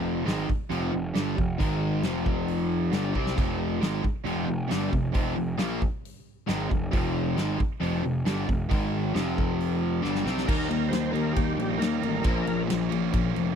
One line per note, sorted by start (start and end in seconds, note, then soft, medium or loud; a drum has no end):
0.00 0.24 F1 medium
0.00 0.25 F2 medium
0.00 0.26 C3 medium
0.00 0.26 F3 loud
0.25 0.47 G#1 medium
0.25 0.47 G#2 medium
0.25 0.48 D#3 medium
0.25 0.48 G#3 medium
0.25 snare medium
0.25 open hi-hat soft
0.48 muted overdriven electric guitar stroke medium
0.48 muted picked electric bass stroke soft
0.48 kick medium
0.70 0.92 F1 medium
0.70 0.91 F2 medium
0.70 0.92 C3 medium
0.70 0.92 F3 medium
0.70 open hi-hat soft
0.93 1.14 F1 medium
0.93 1.10 F2 medium
0.93 1.11 C3 medium
1.15 1.36 G1 medium
1.15 1.36 G2 medium
1.15 1.37 D3 medium
1.15 1.37 G3 medium
1.15 snare medium
1.15 open hi-hat soft
1.37 1.58 F1 medium
1.37 1.55 F2 medium
1.37 1.55 C3 medium
1.37 kick medium
1.58 2.01 G#1 medium
1.58 2.03 G#2 medium
1.58 2.03 D#3 loud
1.58 2.04 G#3 loud
1.58 kick medium
1.58 open hi-hat soft
2.03 2.89 F1 medium
2.03 2.92 F2 medium
2.03 2.92 C3 medium
2.03 2.93 F3 medium
2.03 snare medium
2.03 open hi-hat soft
2.26 kick medium
2.48 open hi-hat soft
2.93 3.14 G1 medium
2.93 3.15 G2 medium
2.93 3.14 D3 medium
2.93 3.14 G3 medium
2.93 snare medium
2.93 open hi-hat soft
3.15 3.36 C2 medium
3.15 3.35 C3 medium
3.15 3.37 G3 medium
3.15 3.37 C4 medium
3.15 kick medium
3.27 snare medium
3.36 3.79 F1 medium
3.36 3.80 F2 medium
3.36 3.81 C3 medium
3.36 3.81 F3 medium
3.36 kick loud
3.36 open hi-hat soft
3.36 splash medium
3.81 4.02 G#1 medium
3.81 4.03 G#2 medium
3.81 4.03 D#3 medium
3.81 4.03 G#3 medium
3.81 snare loud
3.81 open hi-hat soft
4.04 muted overdriven electric guitar stroke soft
4.04 muted picked electric bass stroke soft
4.04 kick medium
4.25 4.46 F1 medium
4.25 4.46 F2 medium
4.25 4.47 C3 medium
4.25 4.48 F3 medium
4.25 open hi-hat soft
4.47 4.70 F1 medium
4.47 4.66 F2 medium
4.47 4.66 C3 medium
4.71 4.92 G1 medium
4.71 4.92 G2 medium
4.71 4.92 D3 medium
4.71 4.92 G3 loud
4.71 snare loud
4.71 open hi-hat soft
4.93 5.13 F1 medium
4.93 5.10 F2 medium
4.93 5.11 C3 medium
4.93 kick medium
5.14 5.36 F1 medium
5.14 5.35 F2 medium
5.14 5.35 C3 medium
5.14 5.37 F3 medium
5.14 kick loud
5.14 open hi-hat soft
5.36 5.58 F1 medium
5.36 5.54 F2 medium
5.36 5.54 C3 medium
5.58 5.80 A#1 medium
5.58 5.80 A#2 medium
5.58 5.81 F3 medium
5.58 5.81 A#3 medium
5.58 snare medium
5.58 open hi-hat soft
5.82 kick medium
6.05 open hi-hat soft
6.47 6.70 G#1 medium
6.47 6.69 G#2 medium
6.47 6.69 D#3 medium
6.47 6.70 G#3 medium
6.47 snare medium
6.47 open hi-hat soft
6.69 6.92 F1 medium
6.69 6.88 F2 medium
6.69 6.88 C3 medium
6.69 kick medium
6.91 7.35 F1 medium
6.91 7.36 F2 medium
6.91 7.36 C3 medium
6.91 7.36 F3 loud
6.91 kick loud
6.91 open hi-hat soft
7.36 7.59 G#1 medium
7.36 7.57 G#2 medium
7.36 7.58 D#3 medium
7.36 7.59 G#3 medium
7.36 snare medium
7.36 open hi-hat soft
7.58 muted overdriven electric guitar stroke medium
7.58 muted picked electric bass stroke soft
7.58 kick medium
7.80 8.02 F1 medium
7.80 8.01 F2 medium
7.80 8.02 C3 medium
7.80 8.03 F3 medium
7.80 open hi-hat soft
8.02 8.26 F1 medium
8.02 8.21 F2 medium
8.02 8.21 C3 medium
8.25 8.47 G1 medium
8.25 8.47 G2 medium
8.25 8.48 D3 medium
8.25 8.48 G3 medium
8.25 snare medium
8.25 open hi-hat soft
8.47 8.70 F1 medium
8.47 8.66 F2 medium
8.47 8.66 C3 medium
8.47 kick medium
8.70 9.13 G#1 medium
8.70 9.13 G#2 medium
8.70 9.14 D#3 medium
8.70 9.14 G#3 medium
8.70 kick loud
8.70 open hi-hat soft
9.14 10.00 F1 medium
9.14 10.02 F2 medium
9.14 10.02 C3 medium
9.14 10.02 F3 medium
9.14 snare medium
9.14 open hi-hat soft
9.38 kick medium
9.61 open hi-hat soft
10.02 10.25 G1 medium
10.02 10.24 G2 medium
10.02 10.23 D3 medium
10.02 10.23 G3 medium
10.02 snare medium
10.15 snare medium
10.24 10.47 C2 medium
10.24 10.46 C3 medium
10.24 10.46 G3 medium
10.24 10.47 C4 medium
10.24 snare medium
10.38 snare medium
10.46 10.67 D#2 medium
10.46 10.68 D#3 medium
10.46 11.12 G3 medium
10.46 10.68 A#3 medium
10.46 10.69 D#4 medium
10.46 10.67 A#4 medium
10.46 kick loud
10.46 crash loud
10.68 10.88 D#2 medium
10.68 10.89 D#3 medium
10.68 10.90 A#3 medium
10.68 10.92 A#4 medium
10.68 ride medium
10.88 11.10 D#2 medium
10.88 11.11 D#3 medium
10.88 11.12 A#3 medium
10.88 11.13 C5 medium
10.93 snare loud
10.93 ride medium
11.11 11.33 D#2 medium
11.11 11.33 D#3 medium
11.11 11.34 A#3 medium
11.11 11.79 D#4 medium
11.11 11.33 A#4 medium
11.15 11.78 D#3 medium
11.15 11.79 G3 medium
11.15 ride medium
11.33 11.56 D#3 medium
11.33 11.56 A#3 medium
11.33 11.53 G4 medium
11.33 kick medium
11.33 ride medium
11.37 11.55 D#2 medium
11.54 11.77 A#1 medium
11.54 11.77 D#3 medium
11.54 11.78 A#3 medium
11.54 11.79 G4 medium
11.60 ride medium
11.78 11.99 D#2 medium
11.78 12.00 D#3 medium
11.78 12.24 G3 medium
11.78 12.00 A#3 medium
11.78 11.97 A#4 medium
11.82 12.25 D#4 medium
11.82 snare loud
11.82 ride medium
11.99 12.22 D#3 medium
11.99 12.23 A#3 medium
11.99 12.63 A#4 medium
12.03 12.22 A1 medium
12.03 ride medium
12.23 12.43 A#1 loud
12.23 12.45 A#2 medium
12.23 12.45 F3 medium
12.23 12.45 A#3 loud
12.23 12.88 C#4 medium
12.23 kick loud
12.23 ride medium
12.46 12.67 A#1 medium
12.46 12.66 A#2 medium
12.46 12.66 F3 medium
12.46 ride medium
12.67 12.88 A#2 medium
12.67 12.88 F3 medium
12.67 snare loud
12.67 ride medium
12.72 12.89 A#1 medium
12.89 13.11 A#1 medium
12.89 13.11 A#2 medium
12.89 13.11 F3 medium
12.89 13.55 A#3 medium
12.89 13.55 C#4 medium
12.89 ride medium
13.12 13.32 A#1 medium
13.12 13.33 A#2 medium
13.12 13.33 F3 medium
13.12 kick loud
13.12 ride medium
13.34 13.55 F1 medium
13.34 13.55 A#2 medium
13.34 13.55 F3 medium
13.34 ride medium